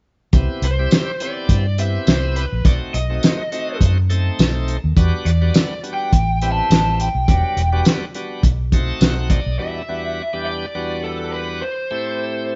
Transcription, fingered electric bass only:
0.33 0.47 C2 medium
0.62 0.86 C2 medium
1.49 1.97 G2 medium
2.07 2.44 C2 medium
2.53 2.63 A#1 medium
2.65 2.78 B1 medium
2.94 3.18 B1 medium
3.81 4.28 F#2 medium
4.39 4.76 B1 medium
4.84 4.94 D#2 medium
4.97 5.10 E2 medium
5.25 5.49 E2 medium
6.12 6.60 A1 medium
6.70 7.07 A1 medium
7.15 7.26 B1 medium
7.28 7.41 E1 medium
7.57 7.81 E1 medium
8.43 8.91 B1 medium
9.01 9.38 B1 medium
9.46 9.57 B1 medium

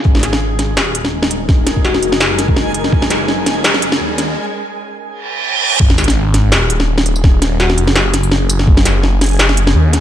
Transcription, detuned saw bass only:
0.05 0.79 G#1 loud
0.77 2.04 D#1 medium
2.03 3.99 F#1 loud
4.00 4.36 D#2 loud
5.80 6.54 G#1 loud
6.52 7.79 D#1 medium
7.78 9.74 F#1 loud
9.75 10.00 D#2 loud

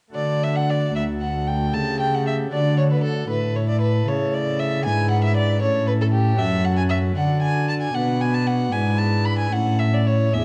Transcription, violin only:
0.15 0.45 D5 medium
0.43 0.57 E5 medium
0.55 0.71 F#5 medium
0.70 0.95 D5 medium
0.96 1.04 E5 medium
1.22 1.49 F#5 medium
1.47 1.75 G5 medium
1.74 2.00 A5 medium
2.00 2.16 G5 medium
2.14 2.26 F#5 medium
2.27 2.35 E5 medium
2.53 2.77 D5 medium
2.78 2.83 C#5 medium
2.92 3.03 B4 soft
3.03 3.29 A4 medium
3.30 3.57 B4 medium
3.56 3.68 C#5 soft
3.69 3.81 D5 medium
3.81 4.09 B4 medium
4.08 4.35 C#5 medium
4.34 4.61 D5 medium
4.59 4.84 E5 medium
4.85 5.10 G#5 medium
5.11 5.23 F#5 medium
5.24 5.36 E5 medium
5.37 5.61 D5 medium
5.62 5.87 C#5 medium
5.87 5.92 B4 medium
6.01 6.06 A4 medium
6.13 6.40 G4 medium
6.38 6.66 E5 medium
6.64 6.76 F#5 medium
6.77 6.82 G#5 medium
6.89 6.97 E5 medium
7.16 7.42 F#5 medium
7.42 7.68 G#5 medium
7.69 7.74 A5 medium
7.81 7.96 G#5 medium
7.94 8.22 F#5 medium
8.21 8.35 G#5 medium
8.34 8.48 A5 medium
8.47 8.73 F#5 medium
8.72 9.00 G#5 medium
8.98 9.27 A5 medium
9.25 9.38 B5 medium
9.39 9.54 G#5 medium
9.52 9.81 F#5 medium
9.79 9.95 E5 medium
9.94 10.08 D5 medium
10.06 10.35 C#5 medium
10.33 10.45 E5 medium

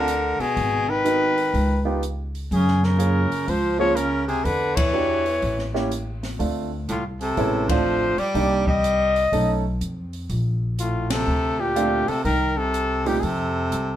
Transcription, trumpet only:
0.00 0.42 A#4 medium
0.41 0.91 G#4 medium
0.90 1.86 B4 medium
2.53 2.86 G#4 medium
2.85 3.51 A#4 medium
3.50 3.79 C5 medium
3.79 3.97 C#5 medium
3.96 4.27 A#4 medium
4.27 4.46 G#4 medium
4.44 4.77 B4 medium
4.75 5.73 C#5 medium
6.91 7.05 F4 medium
7.21 7.71 A4 medium
7.69 8.21 C5 medium
8.19 8.67 D5 medium
8.69 9.61 D#5 medium
10.80 11.13 F4 medium
11.11 11.62 A4 medium
11.60 12.10 G4 medium
12.08 12.24 A4 medium
12.25 12.59 A#4 medium
12.58 13.09 A4 medium
13.08 13.21 G4 medium
13.20 13.25 G#4 medium
13.20 13.96 A4 medium

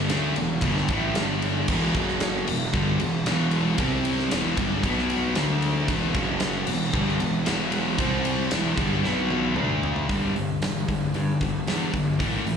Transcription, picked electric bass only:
0.09 0.34 D2 loud
0.36 0.60 E1 medium
0.62 0.87 G1 medium
0.89 1.13 A1 medium
1.15 1.64 G1 loud
1.68 1.93 E1 medium
1.95 2.44 F#1 medium
2.49 2.73 E1 medium
2.74 2.98 G1 medium
3.01 3.25 E1 medium
3.28 3.76 E1 medium
3.79 4.28 C2 medium
4.32 4.56 E1 loud
4.58 4.82 G1 loud
4.83 5.32 B1 medium
5.37 5.86 D2 loud
5.88 6.13 E1 medium
6.15 6.64 F#1 medium
6.68 6.92 E1 medium
6.94 7.18 G1 medium
7.21 7.45 E1 medium
7.47 7.95 E1 medium
7.99 8.48 C2 medium
8.52 8.76 E1 medium
8.77 9.02 G1 loud
9.04 9.53 B1 medium
9.56 10.05 D2 loud
10.10 10.44 G1 medium
10.63 10.80 E1 medium
10.89 11.06 G1 medium
11.14 11.32 G2 medium
11.41 11.58 G1 medium
11.67 11.84 E2 medium
11.94 12.20 G1 medium
12.20 12.37 A1 medium
12.46 12.57 A1 medium

